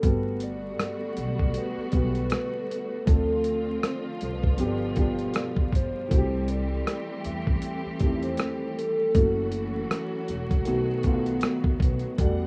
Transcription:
0.02 G1 D3 G3 A3 B3 F#4 A4 B4, kick, closed hi-hat
0.40 D5, closed hi-hat
0.79 cross-stick, closed hi-hat
1.17 B1 D5, closed hi-hat
1.39 kick
1.54 B4, closed hi-hat
1.77 muted upright bass stroke
1.92 B1 G3 B3 F#4 B4, kick, closed hi-hat
2.15 closed hi-hat
2.30 cross-stick, closed hi-hat
2.71 closed hi-hat
3.06 D2 D3 F3 C4 D4 F4 A4, kick, closed hi-hat
3.44 closed hi-hat
3.83 C5, cross-stick, closed hi-hat
4.21 C2 B4, closed hi-hat
4.43 kick
4.57 G1 B2 F3 G3 B3 D4 G4, closed hi-hat
4.96 F3 B3 D4 G4, kick, closed hi-hat
5.19 closed hi-hat
5.34 cross-stick, closed hi-hat
5.56 kick
5.73 G1 C5, kick, closed hi-hat
6.08 C2 E3 A3 C4 F#4 G4, kick, closed hi-hat
6.18 G4
6.48 D5, closed hi-hat
6.87 cross-stick, closed hi-hat
7.24 E2 E5, closed hi-hat
7.47 kick
7.62 E5, closed hi-hat
7.85 muted upright bass stroke
7.99 E2 D#3 A3 C4 G4, kick, closed hi-hat
8.06 E3
8.23 C5, closed hi-hat
8.37 cross-stick, closed hi-hat
8.78 A4, closed hi-hat
9.14 F#1 E3 F#3 A3 C#4 F#4, kick, closed hi-hat
9.52 closed hi-hat
9.91 cross-stick, closed hi-hat
10.28 E1, closed hi-hat
10.51 kick, closed hi-hat
10.65 B1 D#3 A3 B3 F#4, closed hi-hat
11.03 D#3 A3 B3 F4, kick, closed hi-hat
11.13 F#4
11.26 closed hi-hat
11.41 cross-stick, closed hi-hat
11.64 kick
11.80 B1 B4, kick, closed hi-hat
11.99 closed hi-hat
12.17 E2 D3 E3 G3 A3 B3 D4 F#4 D5 F#5, kick, closed hi-hat

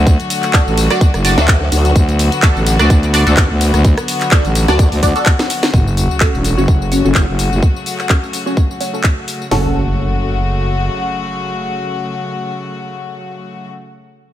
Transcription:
Already playing: D2 D3 F#3 A3 F#4
0.07 kick, closed hi-hat, tambourine
0.20 closed hi-hat, tambourine
0.30 open hi-hat, ride, tambourine
0.43 clap, closed hi-hat, tambourine
0.53 D4 F#4 A4, kick, clap, closed hi-hat, tambourine
0.67 A1, tambourine
0.78 open hi-hat, ride, tambourine
0.90 D4 F#4 D5, cross-stick, closed hi-hat, tambourine
1.01 kick, closed hi-hat, tambourine
1.14 F#1, cross-stick, closed hi-hat, tambourine
1.25 D4 F#4 D5, open hi-hat, ride, tambourine
1.38 D2 D4 F#4 A4, closed hi-hat, tambourine
1.48 kick, clap, closed hi-hat, tambourine
1.72 D2, open hi-hat, ride, tambourine
1.85 closed hi-hat, tambourine
1.96 D2 B3, kick, closed hi-hat, tambourine
2.09 closed hi-hat, tambourine
2.19 open hi-hat, ride, tambourine
2.32 closed hi-hat, tambourine
2.42 D4 F#4 A4, kick, clap, closed hi-hat, tambourine
2.56 A1, tambourine
2.67 open hi-hat, ride, tambourine
2.79 D2 D4 F#4 D5, cross-stick, closed hi-hat, tambourine
2.90 kick, closed hi-hat, tambourine
3.03 closed hi-hat, tambourine
3.14 D4 F#4 D5, open hi-hat, ride, tambourine
3.27 D2 D4 F#4 A4, closed hi-hat, tambourine
3.37 D2, kick, clap, closed hi-hat, tambourine
3.50 D2
3.61 open hi-hat, ride, tambourine
3.74 D2, cross-stick, closed hi-hat, tambourine
3.84 kick, closed hi-hat, tambourine
3.97 cross-stick, closed hi-hat, tambourine
4.08 open hi-hat, ride, tambourine
4.21 clap, closed hi-hat, tambourine
4.31 D4 F#4 A4, kick, clap, closed hi-hat, tambourine
4.45 A1, closed hi-hat, tambourine
4.55 open hi-hat, ride, tambourine
4.68 D2 D4 F#4 D5, cross-stick, closed hi-hat, tambourine
4.79 kick, closed hi-hat, tambourine
4.92 D2, open hi-hat, tambourine
5.03 D2 D4 F#4 D5, kick, open hi-hat, ride, tambourine
5.16 D4 F#4 A4, closed hi-hat, tambourine
5.26 kick, clap, closed hi-hat, tambourine
5.39 snare, closed hi-hat, tambourine
5.50 open hi-hat, ride, tambourine
5.63 snare, closed hi-hat, tambourine
5.74 F#1 C#3 F#3 A3 F#4, kick, tambourine, sub drop
5.87 tambourine
5.97 open hi-hat, tambourine
6.11 tambourine
6.20 C#4 F#4 A4, kick, clap, tambourine
6.34 E1, tambourine
6.44 open hi-hat, tambourine
6.57 F#1 C#4 F#4 C#5, tambourine
6.68 kick, tambourine
6.82 tambourine
6.92 C#4 F#4 C#5, open hi-hat, tambourine
7.05 F#1 C#4 F#4 A4, tambourine
7.15 F#1, kick, clap, tambourine
7.28 F#1
7.39 open hi-hat, tambourine
7.52 F#1, tambourine
7.63 kick, tambourine
7.76 tambourine
7.86 open hi-hat, tambourine
7.99 clap, tambourine
8.09 C#4 F#4 A4, kick, clap, tambourine
8.23 tambourine
8.33 open hi-hat, tambourine
8.46 C#4 F#4 C#5, tambourine
8.57 kick, tambourine
8.71 tambourine
8.81 C#4 F#4 C#5, open hi-hat, tambourine
8.94 C#4 F#4 A4, tambourine
9.04 kick, clap, tambourine
9.28 open hi-hat, tambourine
9.42 tambourine
9.51 F#1 C#3 F#3 A3 C#4 F#4 A4, snare, floor tom, open hi-hat, impact

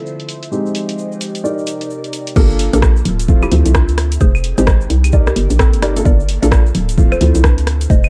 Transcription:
Already playing: D3 F3 A3 C4 E4 A4 C5 E5
0.06 shaker
0.20 closed hi-hat, shaker
0.29 open hi-hat, shaker
0.43 closed hi-hat, shaker
0.51 F3 G#3 C4 D#4 G4 D#5, shaker
0.66 shaker
0.75 open hi-hat, shaker
0.89 closed hi-hat, shaker
0.98 shaker
1.12 shaker
1.21 open hi-hat, shaker
1.35 closed hi-hat, shaker
1.44 C3 D#4 G4 A#4 D5, shaker
1.58 shaker
1.67 open hi-hat, shaker
1.81 closed hi-hat, shaker
1.90 shaker
2.04 closed hi-hat, shaker
2.13 open hi-hat, shaker
2.27 closed hi-hat, shaker
2.36 G1 A#3 D4 F4 G4 A4 A#4, kick, crash, shaker
2.50 shaker
2.59 open hi-hat
2.73 A#1 A#3 D4 F4 G4 A4 A#4, closed hi-hat, shaker
2.82 kick, cross-stick, shaker
2.96 shaker
3.05 D1 C4 E5, open hi-hat
3.19 closed hi-hat, shaker
3.28 F3 A3 C4 F4, kick, shaker
3.42 E4 G4, claves, shaker
3.51 D2 F3 A3 C4 E4, open hi-hat
3.66 C2, closed hi-hat, shaker
3.74 D4 F4, kick, cross-stick, shaker
3.88 D2, closed hi-hat, shaker
3.98 cross-stick, open hi-hat
4.12 closed hi-hat, shaker
4.21 F1 D#4 G4 G#4 C5, kick, shaker
4.35 claves, shaker
4.44 open hi-hat
4.58 G#1 G#3 C4 D#4 G4 G#4 C5, closed hi-hat, shaker
4.67 kick, cross-stick, shaker
4.81 shaker
4.90 C2, open hi-hat
5.04 closed hi-hat, claves, shaker
5.12 A#3 D4 D#4 G4 A#4 D5, kick, shaker
5.27 G4 A#4, cross-stick, shaker
5.36 G1, open hi-hat
5.50 A#1, closed hi-hat, shaker
5.59 C4 A4, kick, cross-stick, shaker
5.73 G1, closed hi-hat, shaker
5.82 D#4 G4 A#4 D5, cross-stick, open hi-hat
5.96 A#3 D4 F4 A4, closed hi-hat, shaker
6.05 G1 D4 F4 A4 A#4 D5, kick, shaker
6.20 shaker
6.29 open hi-hat
6.42 A#1 A#3 D4 F4 A4 A#4 D5, closed hi-hat, shaker
6.52 kick, cross-stick, shaker
6.66 shaker
6.75 D1 C4 E4, open hi-hat
6.89 closed hi-hat, shaker
6.98 F3 A3 C4 F4, kick, shaker
7.12 A4 C5, claves, shaker
7.21 D2 F3 A3 C4 E4, open hi-hat
7.35 C2, closed hi-hat, shaker
7.44 D4 B4, kick, cross-stick, shaker
7.58 D2, closed hi-hat, shaker
7.67 cross-stick, open hi-hat
7.81 closed hi-hat, shaker
7.90 F1 D#4 G4 G#4 C5 D#5, kick, shaker
8.04 claves, shaker

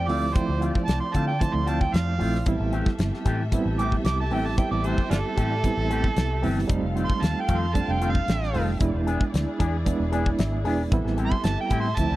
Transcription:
Already playing: F3 G4 D5
0.08 D2 F3 A3 C4 E4 F4 D5, open hi-hat
0.33 F3 A3 C4 E4 C5, kick, closed hi-hat
0.49 D2
0.60 A3 C4 F4, closed hi-hat
0.75 kick
0.86 C2 A5, snare, closed hi-hat
1.00 C6
1.14 D3 A3 C4 F4 A5, kick, closed hi-hat
1.27 G5
1.40 F3 A3 C4 E4 A5, kick, closed hi-hat
1.54 D2 C6
1.66 A3 C4 F4 A5, closed hi-hat
1.81 G5, kick
1.93 F2 F5, snare, closed hi-hat
2.18 A#1 F3 A3 C4 E4 F4, open hi-hat
2.35 snare
2.46 A1 G3 B3 C4 E4 G4 A4 E5, kick, closed hi-hat
2.60 A1
2.72 E3 A3 C4 G4, closed hi-hat
2.86 kick, snare
2.99 G1, snare, closed hi-hat
3.14 snare
3.25 A2 E3 A3 C4 G4, kick, closed hi-hat
3.52 G3 B3 C4 E4, kick, closed hi-hat
3.66 A1
3.79 E3 A3 C4 G4 D6, closed hi-hat
3.92 kick
4.04 C2 D6, snare, closed hi-hat
4.20 A5
4.30 A1 E3 G3 A3 B3 C4 E4 G4 G5, open hi-hat
4.46 A5
4.58 G3 B3 C4 E4 G5, kick, closed hi-hat
4.71 A1 D5
4.84 E3 A3 C4 G4 C5, closed hi-hat
4.98 kick
5.10 G1 D4 F4 A4, snare, closed hi-hat
5.37 A2 E3 A3 C4 G4, kick, closed hi-hat
5.64 G3 B3 C4 E4, kick, closed hi-hat
5.77 A1
5.90 E3 A3 C4 G4, closed hi-hat
6.04 kick
6.16 C2, snare, closed hi-hat
6.42 G1 E3 G3 A3 B3 C4 E4 G4, open hi-hat
6.58 snare
6.67 F1 G3 A3 C4 D#4 F4 A4 F5, kick, closed hi-hat
6.83 F1
6.95 D#3 A3 C4 F4, closed hi-hat
7.06 C6
7.10 kick
7.22 D#2 A5, snare, closed hi-hat
7.40 G5
7.48 F2 D#3 A3 C4 F4, kick, closed hi-hat
7.58 C6
7.74 G3 A3 C4 D4 A5, kick, closed hi-hat
7.88 F1 G5
8.01 D#3 A3 C4 F4, closed hi-hat
8.10 F5
8.15 kick
8.28 A1, snare, closed hi-hat
8.43 snare
8.53 F1 D#3 G3 A3 C4 D#4 F4, open hi-hat
8.79 E1 G#3 B3 D4 E4 G#4 D5, kick, closed hi-hat
8.95 E1
9.06 B3 D4 G#4, closed hi-hat
9.21 kick
9.34 D2, snare, closed hi-hat
9.59 E2 B3 D4 G#4, kick, closed hi-hat
9.86 G#3 B3 D4 E4, kick, closed hi-hat
10.00 E1
10.12 B3 D4 G#4, closed hi-hat
10.26 kick
10.39 G#1 E5, snare, closed hi-hat
10.65 E1 G#3 B3 D4 E4 G#4 D5, open hi-hat
10.92 A1 G3 B3 C4 E4 G4 A4 E5, kick, closed hi-hat
11.05 A1, snare
11.17 G3 C4 E4 G4, closed hi-hat
11.26 C6
11.32 kick
11.44 G1 A5, snare, closed hi-hat
11.61 G5
11.70 A2 G3 C4 E4 G4, kick, closed hi-hat
11.80 C6
11.97 D2 F3 A3 C4 E4 D5 A5, kick, closed hi-hat
12.11 D2

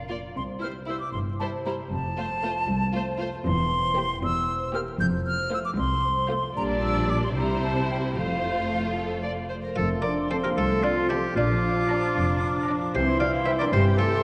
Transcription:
Already playing: F1 F2 A#2 D4 F4 D5
0.09 A#3 F4 A#4 D5
0.35 C2 C3 C6
0.59 G3 C4 E4 F6
0.64 C5
0.86 G3 E4 C5 E6
1.00 D6
1.12 G1 G2 G4 C6
1.39 G3 E4 C5 A5
1.65 G3 E4 G4 C5 A#5
1.92 F1 F2 A5
2.17 A3 C4 F4 C5
2.42 A3 F4 C5
2.68 C2 A4
2.93 A3 F4 C5
3.18 A3 F4 A4 C5
3.45 E1 E2 C6
3.71 C4
3.96 A#3 G4 C5
4.22 E1 E2 A#4 E6
4.47 C5
4.74 A#3 G4 A#4 C5 F6
5.00 F1 F2 G6
5.26 C4 F6
5.51 A3 F4 C5 E6
5.65 D6
5.77 C2 A4 C6
6.04 C5
6.29 A3 F4 A4 C5
6.55 A#1 A#2 G3 D4 D5 A#5
6.82 D4 E6
7.09 G4 D6
7.24 C6
7.34 C2 C3 G3 E4 C5 A#5
7.62 C4 A5
7.89 E4 G4 G5
8.15 F1 F2 F3 A3 F4 C5 F5
8.43 F4
8.70 A4
8.95 A4 C5
9.22 D5 F5
9.49 C5
9.63 A#4
9.76 F1 F2 F3 A3 F4 A4 C6
9.92 C4
10.01 D4 A#4 D5
10.06 F4
10.20 A4
10.31 C4 A4 C5 A5
10.43 A#3 G4 A#4 F5
10.56 C2 A3 C4 F4 A4 A5
10.73 C6
10.83 F3 D4 F4 A5
10.98 F5
11.09 G3 C4 E4 G4 A4 C5 A5
11.35 A#1 A#2 F3 D4 F4 D6
11.50 F3
11.64 D4
11.76 F4
11.88 D4 D5 A#5
12.02 D5
12.15 F1 F2 F5
12.29 A#5
12.42 F5
12.55 D5
12.66 D4 A#4 D5 A#5
12.82 F4
12.94 C2 C3 E3 C4 E4 G4 C5 C6
13.08 G3
13.20 C4 F4 D5 F5
13.34 E4
13.45 E4 G4 C5 E5 G5
13.58 D4 A#4 C5 D5
13.72 G1 G2 C4 G4 C5 E5
13.85 G5
13.98 A3 F4 A4 E5
14.12 C5

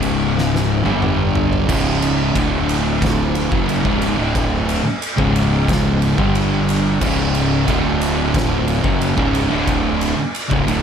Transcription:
Already playing: C#1 C#2 G#2 C#3
0.03 ride
0.38 snare
0.55 snare
0.83 G1 G2 D3 G3, high tom
1.02 mid tom
1.35 floor tom
1.53 floor tom
1.67 C#1 C#2 G#2 C#3, kick, crash
2.02 ride
2.33 D1 D2 A2 D3, kick, ride
2.69 ride
3.02 kick, snare, ride
3.35 ride
3.51 F#1 F#2 C#3 F#3, kick
3.69 ride
3.85 C#1 C#2 G#2 C#3, kick
4.02 ride
4.17 D1 D2 A2 D3
4.35 kick, ride
4.69 ride
4.84 muted distorted electric guitar stroke, muted overdriven electric guitar stroke, muted fingered electric bass stroke
5.02 ride
5.17 C#1 C#2 G#2 C#3, kick
5.36 ride
5.68 kick, snare, ride
6.02 ride
6.17 G1 G2 D3 G3, kick
6.35 ride
6.69 ride
7.01 C#1 C#2 G#2 C#3, kick, crash
7.35 ride
7.66 D1 D2 A2 D3, kick, ride
8.01 ride
8.34 kick, snare, ride
8.68 ride
8.83 F#1 F#2 C#3 F#3, kick
9.01 ride
9.15 C#1 C#2 G#2 C#3, kick
9.35 ride
9.49 D1 D2 A2 D3
9.67 kick, ride
10.01 ride
10.17 muted distorted electric guitar stroke, muted overdriven electric guitar stroke, muted fingered electric bass stroke
10.35 ride
10.49 C#1 C#2 G#2, kick
10.65 D1 D2 A2 D3, ride

